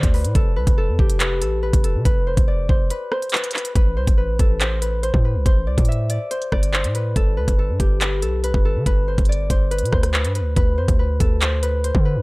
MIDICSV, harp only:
0, 0, Header, 1, 2, 480
1, 0, Start_track
1, 0, Key_signature, 0, "minor"
1, 0, Tempo, 425532
1, 396, Time_signature, 4, 2, 24, 8
1, 13785, End_track
2, 0, Start_track
2, 0, Title_t, "Harp"
2, 0, Program_c, 0, 46
2, 0, Note_on_c, 0, 72, 84
2, 0, Note_on_c, 0, 74, 82
2, 0, Note_on_c, 0, 76, 88
2, 157, Note_on_c, 0, 71, 84
2, 224, Note_off_c, 0, 72, 0
2, 395, Note_on_c, 0, 69, 104
2, 631, Note_off_c, 0, 71, 0
2, 636, Note_on_c, 0, 71, 85
2, 872, Note_off_c, 0, 69, 0
2, 877, Note_on_c, 0, 69, 83
2, 901, Note_off_c, 0, 76, 0
2, 1123, Note_on_c, 0, 67, 83
2, 1350, Note_off_c, 0, 71, 0
2, 1354, Note_on_c, 0, 71, 76
2, 1591, Note_off_c, 0, 69, 0
2, 1596, Note_on_c, 0, 69, 79
2, 1759, Note_off_c, 0, 74, 0
2, 1831, Note_off_c, 0, 71, 0
2, 1836, Note_on_c, 0, 71, 88
2, 2071, Note_off_c, 0, 69, 0
2, 2075, Note_on_c, 0, 69, 79
2, 2309, Note_off_c, 0, 71, 0
2, 2314, Note_on_c, 0, 71, 97
2, 2558, Note_on_c, 0, 72, 71
2, 2626, Note_off_c, 0, 71, 0
2, 2795, Note_on_c, 0, 74, 88
2, 3034, Note_off_c, 0, 72, 0
2, 3039, Note_on_c, 0, 72, 88
2, 3278, Note_on_c, 0, 71, 93
2, 3346, Note_off_c, 0, 72, 0
2, 3520, Note_on_c, 0, 72, 85
2, 3587, Note_off_c, 0, 71, 0
2, 3757, Note_on_c, 0, 71, 82
2, 3778, Note_off_c, 0, 67, 0
2, 3825, Note_off_c, 0, 72, 0
2, 3993, Note_off_c, 0, 71, 0
2, 3998, Note_on_c, 0, 71, 82
2, 4232, Note_off_c, 0, 71, 0
2, 4237, Note_on_c, 0, 71, 105
2, 4476, Note_on_c, 0, 72, 77
2, 4543, Note_off_c, 0, 71, 0
2, 4552, Note_off_c, 0, 69, 0
2, 4711, Note_on_c, 0, 71, 78
2, 4778, Note_off_c, 0, 72, 0
2, 4878, Note_off_c, 0, 74, 0
2, 4959, Note_on_c, 0, 69, 83
2, 5196, Note_on_c, 0, 72, 87
2, 5263, Note_off_c, 0, 71, 0
2, 5434, Note_on_c, 0, 71, 81
2, 5501, Note_off_c, 0, 72, 0
2, 5675, Note_on_c, 0, 72, 94
2, 5743, Note_off_c, 0, 71, 0
2, 5919, Note_on_c, 0, 71, 75
2, 5987, Note_off_c, 0, 72, 0
2, 6158, Note_on_c, 0, 72, 100
2, 6226, Note_off_c, 0, 71, 0
2, 6396, Note_on_c, 0, 74, 74
2, 6638, Note_on_c, 0, 76, 83
2, 6876, Note_off_c, 0, 74, 0
2, 6880, Note_on_c, 0, 74, 78
2, 7111, Note_off_c, 0, 72, 0
2, 7116, Note_on_c, 0, 72, 90
2, 7354, Note_off_c, 0, 74, 0
2, 7359, Note_on_c, 0, 74, 82
2, 7436, Note_off_c, 0, 69, 0
2, 7594, Note_off_c, 0, 72, 0
2, 7599, Note_on_c, 0, 72, 89
2, 7840, Note_on_c, 0, 71, 86
2, 7908, Note_off_c, 0, 72, 0
2, 8075, Note_on_c, 0, 69, 103
2, 8310, Note_off_c, 0, 71, 0
2, 8314, Note_on_c, 0, 71, 76
2, 8553, Note_off_c, 0, 69, 0
2, 8558, Note_on_c, 0, 69, 78
2, 8582, Note_off_c, 0, 76, 0
2, 8794, Note_on_c, 0, 67, 74
2, 9032, Note_off_c, 0, 71, 0
2, 9037, Note_on_c, 0, 71, 91
2, 9269, Note_off_c, 0, 69, 0
2, 9273, Note_on_c, 0, 69, 72
2, 9442, Note_off_c, 0, 74, 0
2, 9515, Note_off_c, 0, 71, 0
2, 9519, Note_on_c, 0, 71, 83
2, 9754, Note_off_c, 0, 69, 0
2, 9758, Note_on_c, 0, 69, 75
2, 9992, Note_off_c, 0, 71, 0
2, 9997, Note_on_c, 0, 71, 88
2, 10240, Note_on_c, 0, 72, 69
2, 10308, Note_off_c, 0, 71, 0
2, 10479, Note_on_c, 0, 74, 76
2, 10711, Note_off_c, 0, 72, 0
2, 10715, Note_on_c, 0, 72, 82
2, 10953, Note_on_c, 0, 71, 90
2, 11021, Note_off_c, 0, 72, 0
2, 11198, Note_on_c, 0, 72, 82
2, 11266, Note_off_c, 0, 71, 0
2, 11434, Note_on_c, 0, 71, 80
2, 11449, Note_off_c, 0, 67, 0
2, 11502, Note_off_c, 0, 72, 0
2, 11676, Note_off_c, 0, 71, 0
2, 11681, Note_on_c, 0, 71, 75
2, 11912, Note_off_c, 0, 71, 0
2, 11917, Note_on_c, 0, 71, 101
2, 12158, Note_on_c, 0, 72, 80
2, 12225, Note_off_c, 0, 71, 0
2, 12236, Note_off_c, 0, 69, 0
2, 12398, Note_on_c, 0, 71, 85
2, 12466, Note_off_c, 0, 72, 0
2, 12562, Note_off_c, 0, 74, 0
2, 12640, Note_on_c, 0, 69, 75
2, 12883, Note_on_c, 0, 72, 85
2, 12951, Note_off_c, 0, 71, 0
2, 13115, Note_on_c, 0, 71, 89
2, 13182, Note_off_c, 0, 72, 0
2, 13356, Note_on_c, 0, 72, 88
2, 13424, Note_off_c, 0, 71, 0
2, 13595, Note_on_c, 0, 71, 79
2, 13663, Note_off_c, 0, 72, 0
2, 13785, Note_off_c, 0, 69, 0
2, 13785, Note_off_c, 0, 71, 0
2, 13785, End_track
0, 0, End_of_file